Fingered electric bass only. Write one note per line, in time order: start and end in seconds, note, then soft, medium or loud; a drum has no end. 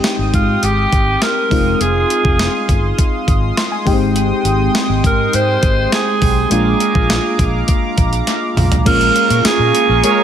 0.19 0.30 G#1 medium
0.34 0.56 G#2 medium
0.63 0.85 G#1 medium
0.93 1.15 G#1 medium
1.51 1.73 F1 medium
1.80 2.03 F1 medium
2.25 2.47 F1 medium
2.69 2.91 G1 medium
3.28 3.50 G#1 medium
3.87 4.31 G#1 loud
4.45 4.67 G#1 loud
4.89 5.00 G#1 loud
5.04 5.26 G#2 medium
5.34 5.56 G#2 medium
5.63 5.85 G#1 medium
6.22 6.44 B1 medium
6.51 6.73 A#1 loud
6.95 7.17 A#1 medium
7.39 7.61 A#1 medium
7.98 8.20 A#1 medium
8.57 8.79 B1 medium
8.86 9.08 A#1 loud
9.30 9.41 A#2 medium
9.45 muted fingered electric bass stroke soft
9.59 9.71 A#2 loud
9.89 10.00 A#1 medium